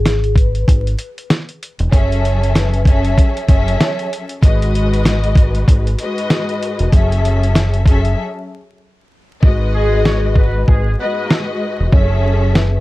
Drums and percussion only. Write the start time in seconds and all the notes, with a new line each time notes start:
0.06 cross-stick, snare, closed hi-hat
0.24 closed hi-hat
0.36 kick, closed hi-hat
0.55 closed hi-hat
0.68 kick, closed hi-hat
0.87 closed hi-hat
0.99 closed hi-hat
1.18 closed hi-hat
1.30 cross-stick, snare, closed hi-hat
1.49 closed hi-hat
1.63 closed hi-hat
1.79 closed hi-hat
1.92 kick, closed hi-hat
2.12 closed hi-hat
2.25 closed hi-hat
2.43 closed hi-hat
2.55 cross-stick, snare, closed hi-hat
2.74 closed hi-hat
2.85 kick, closed hi-hat
3.05 closed hi-hat
3.18 kick, closed hi-hat
3.37 closed hi-hat
3.49 kick, closed hi-hat
3.68 closed hi-hat
3.80 cross-stick, snare, closed hi-hat
3.99 closed hi-hat
4.13 closed hi-hat
4.29 closed hi-hat
4.42 kick, closed hi-hat
4.62 closed hi-hat
4.75 closed hi-hat
4.94 closed hi-hat
5.05 cross-stick, snare, closed hi-hat
5.24 closed hi-hat
5.35 kick, closed hi-hat
5.55 closed hi-hat
5.68 kick, closed hi-hat
5.87 closed hi-hat
5.98 closed hi-hat
6.18 closed hi-hat
6.30 cross-stick, snare, closed hi-hat
6.49 closed hi-hat
6.63 closed hi-hat
6.79 closed hi-hat
6.93 kick, closed hi-hat
7.12 closed hi-hat
7.25 closed hi-hat
7.43 closed hi-hat
7.55 cross-stick, snare, closed hi-hat
7.74 closed hi-hat
7.86 kick, closed hi-hat
8.05 closed hi-hat
9.43 kick
10.05 cross-stick, snare
10.36 kick
10.68 kick
11.30 cross-stick, snare
11.93 kick
12.55 cross-stick, snare